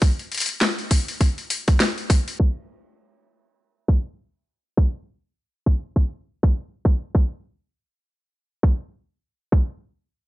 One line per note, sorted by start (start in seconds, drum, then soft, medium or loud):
0.02 kick loud
0.02 open hi-hat soft
0.19 open hi-hat soft
0.32 open hi-hat soft
0.34 open hi-hat soft
0.37 open hi-hat soft
0.40 open hi-hat medium
0.46 open hi-hat medium
0.49 open hi-hat soft
0.61 snare loud
0.61 open hi-hat soft
0.79 open hi-hat soft
0.91 kick medium
0.91 open hi-hat medium
1.08 open hi-hat soft
1.21 kick medium
1.21 open hi-hat soft
1.38 open hi-hat soft
1.50 open hi-hat medium
1.68 kick loud
1.68 open hi-hat soft
1.80 snare loud
1.80 open hi-hat soft
1.98 open hi-hat soft
2.10 kick loud
2.10 open hi-hat medium
2.28 open hi-hat soft
2.40 kick loud
2.40 crash medium
3.88 kick medium
4.77 kick loud
5.66 kick medium
5.96 kick medium
6.43 kick loud
6.85 kick loud
7.15 kick loud
8.63 kick loud
9.52 kick loud